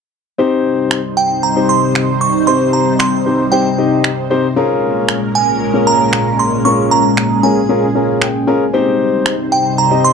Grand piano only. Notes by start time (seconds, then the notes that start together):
0.38 C4 D#4 G4 C5
1.56 C4 D#4 G4 C5
2.47 C4 D#4 G4 C5
3.26 C4 D#4 G4 C5
3.52 C4 D#4 G4 C5
3.78 C4 D#4 G4 D#5
4.30 C4 D#4 G4 C5
4.56 C#4 F4 G#4 A#4
5.74 C#4 F4 G#4 A#4
6.65 C#4 F4 G#4 A#4
7.43 C#4 F4 G#4 A#4
7.69 C#4 F4 G#4 A#4
7.95 C#4 F4 G#4 A#4
8.22 G5
8.47 C#4 F4 G#4 A#4 G#5
8.73 C4 D#4 G4 C5
9.91 C4 D#4 G4 D#5